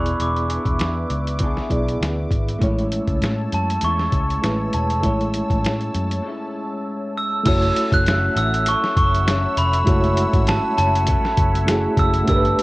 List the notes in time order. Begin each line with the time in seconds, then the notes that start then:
Already playing: E1 E3 B3 D4 E4 G#4 B4 D5 E5 D6
0.06 closed hi-hat
0.20 E1 D6, closed hi-hat
0.36 closed hi-hat
0.48 B3 D4 G#4, closed hi-hat
0.66 E1, kick, closed hi-hat
0.79 E2, snare, closed hi-hat
1.10 C#2, closed hi-hat
1.27 closed hi-hat
1.39 E3 B3 D4, kick, closed hi-hat
1.44 G#4
1.57 snare
1.69 B1 B3 E4 G#4 D5, kick, closed hi-hat
1.89 closed hi-hat
2.01 D2, snare, closed hi-hat
2.31 G#1, kick, closed hi-hat
2.49 closed hi-hat
2.59 A1 A2 G#3 A3 C#4 E4 C#5 A5 E6, kick, closed hi-hat
2.64 E4 C#5
2.79 closed hi-hat
2.92 closed hi-hat
3.07 C#2, kick, closed hi-hat
3.22 A2, snare, closed hi-hat
3.52 F#2 A5, closed hi-hat
3.70 closed hi-hat
3.81 E2 A2 G#3 C#4 E4 C#6, closed hi-hat
3.99 snare
4.12 C#2, kick, closed hi-hat
4.30 closed hi-hat
4.41 A1 A2 G#3 A3 C#4 E4 B4, snare, closed hi-hat
4.73 E1 A5, closed hi-hat
4.90 closed hi-hat
5.01 A1 A2 G#3 A3 C#4 E4 A5, kick, closed hi-hat
5.06 E4 C#5
5.21 closed hi-hat
5.34 closed hi-hat
5.50 A1, kick, closed hi-hat
5.64 A2, snare, closed hi-hat
5.81 closed hi-hat
5.95 F#2, closed hi-hat
6.11 closed hi-hat
6.22 A2 G#3
6.27 C#4 E4
7.17 E6
7.43 F#1 F#3 A3 C#4 E4 F#4 C#5 E5 F#5 E6, kick, closed hi-hat, crash
7.47 A4 C#5
7.62 closed hi-hat
7.76 closed hi-hat
7.92 F#1 F#6, kick, closed hi-hat
8.06 snare, closed hi-hat
8.35 A1 C#4 E4 A4 E6, closed hi-hat
8.54 closed hi-hat
8.65 F#3 C#4 E4 A4 C#6, closed hi-hat
8.84 snare
8.97 F#1 C#6, kick, closed hi-hat
9.14 closed hi-hat
9.25 F#3 C#4 E4 A4, snare, closed hi-hat
9.57 F1 B5, closed hi-hat
9.73 closed hi-hat
9.84 F#1 F#3 G#3 C#4 E4 F#4, kick, closed hi-hat
9.88 A3 A4 C#5
10.04 closed hi-hat
10.17 closed hi-hat
10.33 G#1, kick, closed hi-hat
10.47 A5, snare, closed hi-hat
10.76 F#1 C#4 E4 A4 A5, closed hi-hat
10.95 closed hi-hat
11.07 F#3 C#4 E4 A4, kick, closed hi-hat
11.25 snare
11.37 F#1, kick, closed hi-hat
11.55 closed hi-hat
11.66 F#3 A3 C#4 E4 F#4 G#4, snare, closed hi-hat
11.70 A4
11.97 F#1 E6, kick, closed hi-hat
12.14 closed hi-hat
12.25 G1 G3 A3 B3 D4 G4 B4 D5 G5, kick, closed hi-hat
12.29 D4 A4 A#4 E6
12.36 B4
12.45 closed hi-hat
12.59 closed hi-hat